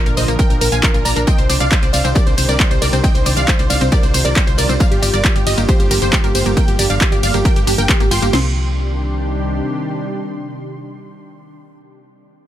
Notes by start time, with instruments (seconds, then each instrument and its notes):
Already playing: analog synth pad A#2 D3 F3 D4 F4
0.06 fm bass A#1, synth pluck A#4, supersaw synth A#4, synth arpeggio sound F5, closed hi-hat, tambourine
0.17 fm bass A#1, synth pluck C5 D#5, supersaw synth D#5, open hi-hat, tambourine
0.28 fm bass A#1, synth arpeggio sound A#3, synth pluck A#4, supersaw synth A#4, closed hi-hat, tambourine
0.39 synth pluck A#4 G5, synth arpeggio sound A#4, supersaw synth G5, kick, closed hi-hat, tambourine
0.50 fm bass A#1, synth pluck A#4, supersaw synth A#4, closed hi-hat, tambourine
0.61 fm bass A#1, synth pluck A#4, synth arpeggio sound A#4, supersaw synth A#4, open hi-hat, tambourine
0.72 fm bass A#1, synth pluck F5 G#5, supersaw synth G#5, closed hi-hat, tambourine
0.83 synth pluck A#4, synth arpeggio sound A#4, supersaw synth A#4, kick, clap, closed hi-hat, tambourine
0.94 fm bass A#1, synth arpeggio sound F4, synth pluck A#4, supersaw synth A#4, closed hi-hat, tambourine
1.05 fm bass A#1, synth pluck D5 A#5, supersaw synth A#5, open hi-hat, tambourine
1.16 fm bass A#1, synth arpeggio sound D4, synth pluck A#4, supersaw synth A#4, closed hi-hat, tambourine
1.27 analog synth pad C3 D#3 G3 G4, synth arpeggio sound C4, synth pluck D#5 G5, supersaw synth G5, kick, closed hi-hat, tambourine
1.38 fm bass C2, synth pluck C5, supersaw synth C5, closed hi-hat, tambourine
1.49 fm bass C2, synth pluck C5, supersaw synth C5, synth arpeggio sound D5, open hi-hat, ride, tambourine
1.60 fm bass C2, synth pluck D5 F5, supersaw synth F5, closed hi-hat, tambourine
1.71 synth arpeggio sound D#4, synth pluck C5, supersaw synth C5, kick, clap, closed hi-hat, tambourine
1.82 fm bass C2, synth pluck C5, supersaw synth C5, synth arpeggio sound D5, closed hi-hat, tambourine
1.93 fm bass C2, synth pluck D5 F5, supersaw synth F5, open hi-hat, ride, tambourine
2.04 fm bass C2, synth arpeggio sound C4, synth pluck C5, supersaw synth C5, closed hi-hat, tambourine
2.15 synth arpeggio sound G4, synth pluck A#4 D5, supersaw synth D5, kick, closed hi-hat, tambourine
2.26 fm bass C2, synth pluck C5, supersaw synth C5, closed hi-hat, tambourine
2.37 fm bass C2, synth pluck C5, synth arpeggio sound C5, supersaw synth C5, open hi-hat, ride, tambourine
2.49 fm bass C2, synth pluck A#4 D5, supersaw synth D5, closed hi-hat, tambourine
2.59 synth arpeggio sound G4, synth pluck C5, supersaw synth C5, kick, clap, closed hi-hat, tambourine
2.71 fm bass C2, synth pluck C5, synth arpeggio sound C5, supersaw synth C5, closed hi-hat, tambourine
2.82 fm bass C2, synth pluck A#4 D5, supersaw synth D5, open hi-hat, ride, tambourine
2.93 fm bass C2, synth arpeggio sound C4, synth pluck C5, supersaw synth C5, closed hi-hat, tambourine
3.04 synth arpeggio sound C4, analog synth pad F4, synth pluck D#5 G5, supersaw synth G5, kick, closed hi-hat, tambourine
3.15 fm bass C2, synth pluck C5, supersaw synth C5, closed hi-hat, tambourine
3.26 fm bass C2, synth pluck C5, supersaw synth C5, synth arpeggio sound D5, open hi-hat, ride, tambourine
3.37 fm bass C2, synth pluck D5 F5, supersaw synth F5, closed hi-hat, tambourine
3.48 synth arpeggio sound D#4, synth pluck C5, supersaw synth C5, kick, clap, closed hi-hat, tambourine
3.59 fm bass C2, synth pluck C5, supersaw synth C5, synth arpeggio sound D5, closed hi-hat, tambourine
3.70 fm bass C2, synth pluck D5 F5, supersaw synth F5, open hi-hat, ride, tambourine
3.81 fm bass C2, synth arpeggio sound C4, synth pluck C5, supersaw synth C5, closed hi-hat, tambourine
3.92 synth arpeggio sound G4, synth pluck A#4 D5, supersaw synth D5, kick, closed hi-hat, tambourine
4.03 fm bass C2, synth pluck C5, supersaw synth C5, closed hi-hat, tambourine
4.14 fm bass C2, synth pluck C5, synth arpeggio sound C5, supersaw synth C5, open hi-hat, ride, tambourine
4.25 fm bass C2, synth pluck A#4 D5, supersaw synth D5, closed hi-hat, tambourine
4.36 synth arpeggio sound G4, synth pluck C5, supersaw synth C5, kick, clap, closed hi-hat, tambourine
4.47 fm bass C2, synth pluck C5, synth arpeggio sound C5, supersaw synth C5, closed hi-hat, tambourine
4.58 fm bass C2, synth pluck A#4 D5, supersaw synth D5, open hi-hat, ride, tambourine
4.69 fm bass C2, synth arpeggio sound C4, synth pluck C5, supersaw synth C5, closed hi-hat, tambourine
4.80 analog synth pad D3 F3 A#3, synth arpeggio sound A#3, synth pluck D5 F5, supersaw synth F5, kick, closed hi-hat, tambourine
4.91 fm bass G1, synth pluck G4, supersaw synth G4, closed hi-hat, tambourine
5.02 fm bass G1, synth pluck G4, supersaw synth G4, synth arpeggio sound D5, open hi-hat, ride, tambourine
5.13 fm bass G1, synth pluck A#4 D5, supersaw synth D5, closed hi-hat, tambourine
5.24 synth arpeggio sound F4, supersaw synth G4, kick, clap, closed hi-hat, tambourine
5.36 fm bass G1, synth pluck G4, supersaw synth G4, synth arpeggio sound D5, closed hi-hat, tambourine
5.47 fm bass G1, synth pluck G4 D#5, supersaw synth D#5, open hi-hat, ride, tambourine
5.58 fm bass G1, synth arpeggio sound A#3, supersaw synth G4, synth pluck G4, closed hi-hat, tambourine
5.69 synth arpeggio sound G4, synth pluck G4 C5, supersaw synth C5, kick, closed hi-hat, tambourine
5.80 fm bass G1, synth pluck G4, supersaw synth G4, closed hi-hat, tambourine
5.91 fm bass G1, supersaw synth G4, synth pluck G4, synth arpeggio sound A#4, open hi-hat, ride, tambourine
6.02 fm bass G1, synth pluck G4 C5, supersaw synth C5, closed hi-hat, tambourine
6.13 synth arpeggio sound G4, supersaw synth G4, synth pluck G4, kick, clap, closed hi-hat, tambourine
6.24 fm bass G1, synth pluck G4, supersaw synth G4, synth arpeggio sound A#4, closed hi-hat, tambourine
6.35 fm bass G1, synth pluck G4 C5, supersaw synth C5, open hi-hat, ride, tambourine
6.46 fm bass G1, synth arpeggio sound A#3, synth pluck G4, supersaw synth G4, closed hi-hat, tambourine
6.57 synth arpeggio sound A#3, synth pluck A#4 G5, supersaw synth G5, kick, closed hi-hat, tambourine
6.68 fm bass G1, synth pluck G4, supersaw synth G4, closed hi-hat, tambourine
6.79 fm bass G1, synth pluck G4, supersaw synth G4, synth arpeggio sound D5, open hi-hat, ride, tambourine
6.90 fm bass G1, synth pluck D5 F5, supersaw synth F5, closed hi-hat, tambourine
7.01 synth arpeggio sound F4, synth pluck G4, supersaw synth G4, kick, clap, closed hi-hat, tambourine
7.12 fm bass G1, synth pluck G4, supersaw synth G4, synth arpeggio sound D5, closed hi-hat, tambourine
7.23 fm bass G1, synth pluck D5 F5, supersaw synth F5, open hi-hat, ride, tambourine
7.34 fm bass G1, synth arpeggio sound A#3, synth pluck G4, supersaw synth G4, closed hi-hat, tambourine
7.45 synth arpeggio sound G4, synth pluck A#4 G5, supersaw synth G5, kick, closed hi-hat, tambourine
7.56 fm bass G1, supersaw synth G4, synth pluck G4, closed hi-hat, tambourine
7.67 fm bass G1, synth arpeggio sound D4, synth pluck G4, supersaw synth G4, open hi-hat, ride, tambourine
7.78 fm bass G1, synth pluck A#4 G5, supersaw synth G5, closed hi-hat, tambourine
7.89 synth arpeggio sound G4, synth pluck G4, supersaw synth G4, kick, clap, closed hi-hat, tambourine
8.00 fm bass G#1, synth arpeggio sound A#3, synth pluck G4, supersaw synth G4, closed hi-hat, tambourine
8.11 fm bass G1, synth arpeggio sound F4, synth pluck G5 C6, supersaw synth C6, open hi-hat, ride, tambourine
8.22 fm bass G1, synth arpeggio sound A#3, synth pluck G4, supersaw synth G4, closed hi-hat, tambourine
8.33 fm bass C2, analog synth pad C3 D#3 G3 D4 G4, synth arpeggio sound C4, synth pluck C6, supersaw synth C6, snare, crash